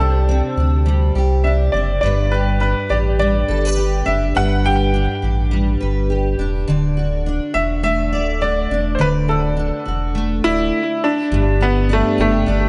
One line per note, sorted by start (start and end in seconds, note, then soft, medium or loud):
0.00 0.42 C2 loud
0.00 2.02 C3 medium
0.00 0.85 G3 medium
0.00 0.27 C4 medium
0.00 0.57 D4 medium
0.00 1.15 G4 medium
0.00 1.12 A4 medium
0.29 1.72 C4 medium
0.57 1.11 D2 medium
0.57 1.44 D4 soft
0.86 3.19 G3 medium
1.15 1.70 C2 medium
1.15 2.03 G4 medium
1.44 2.31 D4 medium
1.44 1.50 E5 medium
1.72 2.00 F#1 medium
1.72 2.10 C4 soft
1.72 2.00 D5 medium
2.01 2.74 G1 medium
2.01 4.34 G2 medium
2.01 3.48 B4 medium
2.01 2.32 D5 medium
2.32 2.88 G4 medium
2.32 2.60 B4 medium
2.60 4.05 D4 medium
2.60 2.91 B4 medium
2.89 3.44 A1 medium
2.89 3.75 G4 medium
2.89 2.97 D5 medium
3.19 5.50 G3 medium
3.19 4.02 D5 medium
3.48 4.03 G1 medium
3.48 3.65 A4 medium
3.65 4.34 B4 medium
3.76 4.63 G4 medium
4.05 4.33 F#1 medium
4.05 4.93 D4 soft
4.05 4.36 E5 medium
4.35 5.07 G1 loud
4.35 6.67 G2 medium
4.35 5.79 B4 medium
4.35 4.66 F#5 loud
4.65 5.21 G4 medium
4.65 5.19 G5 loud
4.94 6.38 D4 medium
5.22 5.77 A1 medium
5.22 6.09 G4 medium
5.51 6.74 G3 medium
5.81 6.35 G1 medium
5.81 6.68 B4 medium
6.10 6.75 G4 medium
6.38 6.65 E1 medium
6.38 7.26 D4 medium
6.68 7.40 D1 loud
6.68 8.98 D3 medium
6.68 8.12 D5 medium
6.97 7.54 F#4 medium
7.26 8.71 D4 medium
7.54 8.14 E1 medium
7.54 8.40 F#4 medium
7.54 7.61 E5 medium
7.83 10.14 A3 medium
7.83 8.43 E5 loud
8.12 8.67 D1 medium
8.12 8.99 D5 medium
8.41 9.27 F#4 medium
8.41 8.96 D5 medium
8.70 8.97 E1 medium
8.70 9.56 D4 medium
8.95 11.31 D3 medium
8.95 9.00 C5 medium
9.00 9.72 D1 loud
9.00 9.07 B4 medium
9.00 10.44 D5 medium
9.28 9.84 F#4 medium
9.28 10.41 A4 medium
9.57 11.31 D4 medium
9.86 10.41 E1 medium
9.86 10.80 F#4 medium
10.15 10.80 A3 medium
10.44 10.72 D1 medium
10.44 11.04 E4 loud
10.44 11.31 D5 medium
11.04 11.63 D4 medium
11.31 12.03 G1 loud
11.31 12.69 G2 medium
11.61 12.69 B3 medium
11.61 11.89 B3 medium
11.89 12.19 A3 medium
11.89 12.46 D4 medium
12.18 12.45 F#1 medium
12.18 12.69 A3 medium
12.18 12.69 G4 medium
12.46 12.69 G1 loud
12.46 12.69 D4 medium